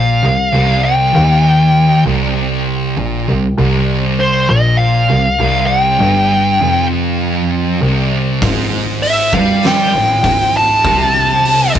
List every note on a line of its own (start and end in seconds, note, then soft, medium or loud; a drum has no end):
0.00 0.20 A#1 loud
0.00 0.22 A#2 medium
0.00 0.84 F5 medium
0.23 0.48 C2 medium
0.23 0.53 C2 medium
0.52 1.13 C2 loud
0.52 1.12 C2 medium
0.85 2.02 G5 loud
1.14 2.05 D#2 medium
1.14 2.02 D#2 medium
2.06 2.93 C2 loud
2.06 2.96 C2 loud
2.97 3.26 A#1 loud
2.97 3.27 A#2 loud
3.28 3.52 C2 medium
3.28 3.56 C2 medium
3.58 4.45 C2 loud
3.58 4.48 C2 loud
4.20 4.50 C5 medium
4.49 5.06 A#1 medium
4.49 5.09 A#2 medium
4.49 4.78 D#5 medium
4.77 5.66 F5 loud
5.10 5.34 C2 medium
5.10 5.38 C2 medium
5.40 5.96 C2 medium
5.40 6.00 C2 loud
5.66 6.85 G5 loud
6.00 6.57 G1 loud
6.00 6.60 G2 loud
6.60 7.78 F1 medium
6.60 7.81 F2 loud
7.81 8.38 C2 loud
7.81 8.41 C2 loud
8.42 9.29 G#1 medium
8.42 9.32 G#2 medium
8.42 kick loud
8.42 open hi-hat medium
9.03 9.34 E5 medium
9.03 open hi-hat medium
9.33 9.89 G2 medium
9.33 9.93 G3 medium
9.33 9.65 F5 medium
9.33 kick loud
9.63 snare medium
9.63 open hi-hat medium
9.68 10.57 G5 loud
9.93 10.22 G#1 medium
9.93 10.18 A2 medium
10.23 10.80 G#1 medium
10.23 10.84 G#2 loud
10.23 kick loud
10.23 open hi-hat medium
10.57 11.73 A5 loud
10.84 11.71 C2 medium
10.84 11.74 C3 loud
10.84 kick loud
10.84 open hi-hat medium
11.45 open hi-hat medium
11.75 11.79 G#1 medium
11.75 11.79 G#2 loud
11.75 kick loud